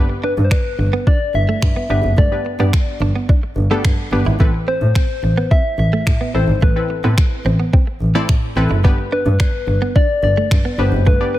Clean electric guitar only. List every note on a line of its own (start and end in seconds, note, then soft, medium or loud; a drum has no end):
0.09 muted clean electric guitar stroke soft
0.24 0.34 D4 medium
0.51 0.62 D4 medium
0.79 muted clean electric guitar stroke soft
0.93 1.03 B3 medium
1.07 1.17 D4 medium
1.35 muted clean electric guitar stroke soft
1.49 1.59 A3 medium
1.76 1.87 B3 medium
1.90 2.01 D4 medium
2.18 2.28 A3 medium
2.46 muted clean electric guitar stroke soft
2.60 2.70 B3 medium
2.74 muted clean electric guitar stroke soft
3.02 3.12 D4 medium
3.16 3.26 B3 medium
3.29 3.40 D4 medium
3.43 muted clean electric guitar stroke soft
3.71 3.81 A3 medium
4.13 4.23 B3 medium
4.26 4.37 E4 medium
4.40 4.51 A3 medium
4.54 muted clean electric guitar stroke soft
4.68 4.78 C4 medium
4.96 5.06 C4 medium
5.24 muted clean electric guitar stroke soft
5.38 5.48 B3 medium
5.51 5.62 C4 medium
5.79 muted clean electric guitar stroke soft
5.93 6.03 A3 medium
6.07 muted clean electric guitar stroke soft
6.21 6.31 B3 medium
6.35 6.45 C4 medium
6.62 6.73 A3 medium
6.90 muted clean electric guitar stroke soft
7.04 7.14 B3 medium
7.18 muted clean electric guitar stroke soft
7.46 7.56 C4 medium
7.60 7.70 B3 medium
7.73 7.84 C4 medium
7.87 muted clean electric guitar stroke soft
8.15 8.26 A3 medium
8.29 muted clean electric guitar stroke soft
8.57 8.67 C4 medium
8.71 8.81 E4 medium
8.85 8.95 B3 medium
8.98 muted clean electric guitar stroke soft
9.12 9.23 D4 medium
9.40 9.50 D4 medium
9.68 muted clean electric guitar stroke soft
9.82 9.92 B3 medium
9.96 10.06 D4 medium
10.24 muted clean electric guitar stroke soft
10.37 10.48 A3 medium
10.65 10.75 B3 medium
10.79 10.89 D4 medium
11.07 11.17 A3 medium
11.34 muted clean electric guitar stroke soft